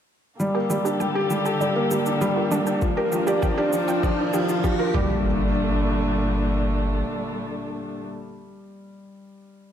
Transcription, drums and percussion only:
0.40 shaker
0.70 shaker
0.86 shaker
1.00 shaker
1.30 shaker
1.46 shaker
1.61 shaker
1.91 shaker
2.06 shaker
2.21 shaker
2.52 shaker
2.67 shaker
2.82 kick, shaker
3.12 shaker
3.27 shaker
3.43 kick, shaker
3.73 shaker
3.88 shaker
4.03 kick, shaker
4.34 shaker
4.49 shaker
4.64 kick, shaker
4.94 kick

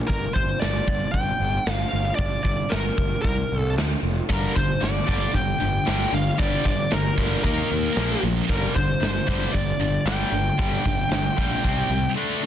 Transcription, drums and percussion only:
0.09 kick, open hi-hat
0.36 kick
0.61 snare, open hi-hat
0.75 snare
0.88 kick
1.14 kick, open hi-hat
1.66 snare, open hi-hat
2.18 kick, open hi-hat
2.45 kick
2.71 snare, open hi-hat
2.98 kick
3.24 kick, open hi-hat
3.78 snare, open hi-hat
4.30 kick, open hi-hat
4.56 kick
4.83 snare, open hi-hat
4.97 snare
5.08 kick
5.34 kick, open hi-hat
5.87 snare, open hi-hat
6.39 kick, open hi-hat
6.66 kick
6.91 snare, open hi-hat
7.05 snare
7.18 kick
7.44 kick, open hi-hat
7.96 snare, open hi-hat
8.49 kick, open hi-hat
8.76 kick
9.02 snare, open hi-hat
9.16 snare
9.28 kick
9.54 kick, open hi-hat
10.07 snare, open hi-hat
10.59 kick, open hi-hat
10.85 kick
11.11 snare, open hi-hat
11.38 kick
11.64 kick, open hi-hat

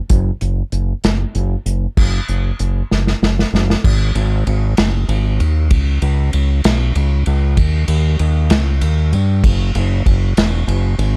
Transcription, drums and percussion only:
0.09 kick, closed hi-hat
0.41 closed hi-hat
0.72 closed hi-hat
1.04 snare, closed hi-hat
1.35 closed hi-hat
1.66 closed hi-hat
1.97 kick, crash
2.28 closed hi-hat
2.59 closed hi-hat
2.91 snare
3.07 snare
3.23 snare
3.39 snare
3.55 snare
3.70 snare
3.84 kick, crash
4.15 ride
4.47 ride
4.77 snare, ride
5.09 ride
5.40 ride
5.71 kick, ride
6.02 ride
6.33 ride
6.64 snare, ride
6.96 ride
7.26 ride
7.57 kick, ride
7.88 ride
8.19 ride
8.50 snare, ride
8.81 ride
9.13 ride
9.44 kick, ride
9.75 ride
10.06 kick, ride
10.37 snare, ride
10.68 ride
10.99 ride

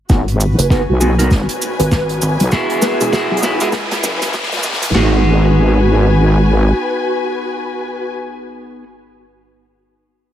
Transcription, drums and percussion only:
0.09 kick, snare, cabasa
0.28 closed hi-hat
0.40 cabasa
0.59 closed hi-hat, cabasa
0.70 kick, snare, cabasa
1.01 cabasa
1.19 closed hi-hat, cabasa
1.31 kick, snare, cabasa
1.49 closed hi-hat
1.62 cabasa
1.80 closed hi-hat, cabasa
1.91 kick, snare, cabasa
2.09 closed hi-hat
2.22 cabasa
2.40 closed hi-hat, cabasa
2.51 kick, snare, cabasa
2.70 closed hi-hat
2.82 snare, cabasa
3.00 closed hi-hat, cabasa
3.13 kick, snare, cabasa
3.37 closed hi-hat
3.43 snare, cabasa
3.60 closed hi-hat, cabasa
3.72 kick, snare, cabasa
3.91 snare, closed hi-hat
4.04 snare, cabasa
4.22 snare, closed hi-hat, cabasa
4.33 kick, snare, cabasa
4.43 snare
4.52 snare, closed hi-hat
4.58 snare
4.63 snare, cabasa
4.73 snare
4.82 snare, closed hi-hat, cabasa
4.88 snare
4.95 snare, clap

